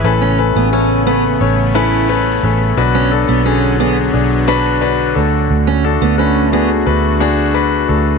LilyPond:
<<
  \new Staff \with { instrumentName = "Grand piano" } { \time 4/4 \key d \lydian \tempo 4 = 88 <cis' a' b'>8 <cis' a' b'>8 <cis' a' cis''>8 <cis' a' b'>8 <cis' a' cis''>8 <cis' a' b'>8 <cis' a' b'>8 <cis' a' b'>8 | <d' fis' b'>8 <d' fis' a'>8 <d fis' gis'>8 <d' fis' gis'>8 <d' fis' gis'>8 <d' fis' b'>8 <d' fis' b'>8 <d' fis' a'>8~ | <d' fis' a'>8 <d' fis' a'>8 <d fis' b'>8 <d' fis' gis'>8 <d' fis' b'>8 <d' fis' gis'>8 <d' fis' b'>8 <d' fis' a'>8 | }
  \new Staff \with { instrumentName = "Grand piano" } { \clef bass \time 4/4 \key d \lydian <a, e>4. r2 r8 | <b, fis>4. r2 a,8~ | a,4 r2. | }
  \new Staff \with { instrumentName = "Steel-string acoustic guitar" } { \time 4/4 \key d \lydian r16 cis'16 r16 b16 cis'8 b16 r8. e'8 r4 | r16 cis'16 r16 b16 cis'8 b16 r8. d'8 r4 | r16 cis'16 r16 b16 cis'8 b16 r8. d'8 r4 | }
  \new Staff \with { instrumentName = "Analog synth pad" } { \time 4/4 \key d \lydian <cis a b>1 | <d fis b>2.~ <d fis b>8 <a fis'>8~ | <a fis'>1 | }
  \new Staff \with { instrumentName = "Fingered electric bass" } { \clef bass \time 4/4 \key d \lydian a,,8. a,,4~ a,,16 a,,4. a,,8 | b,,8. b,,4~ b,,16 b,,4. d,8 | d,8. d,4~ d,16 d,4. d,8 | }
>>